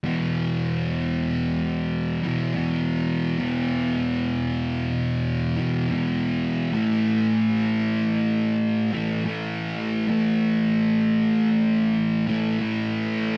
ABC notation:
X:1
M:4/4
L:1/8
Q:"Swing" 1/4=72
K:Ador
V:1 name="Distorted electric guitar" clef=bass
[E,,B,,E,]4- [E,,B,,E,] [E,,B,,E,] [E,,B,,E,]2 | [E,,B,,E,]4- [E,,B,,E,] [E,,B,,E,] [E,,B,,E,]2 | [A,,E,A,]4- [A,,E,A,] [A,,E,A,] [A,,E,A,]2 | [A,,E,A,]4- [A,,E,A,] [A,,E,A,] [A,,E,A,]2 |]
V:2 name="Distorted electric guitar" clef=bass
[E,,B,,E,]4- [E,,B,,E,] [E,,B,,E,] [E,,B,,E,]2 | [E,,B,,E,]4- [E,,B,,E,] [E,,B,,E,] [E,,B,,E,]2 | [A,,E,A,]4- [A,,E,A,] [A,,E,A,] [A,,E,A,]2 | [A,,E,A,]4- [A,,E,A,] [A,,E,A,] [A,,E,A,]2 |]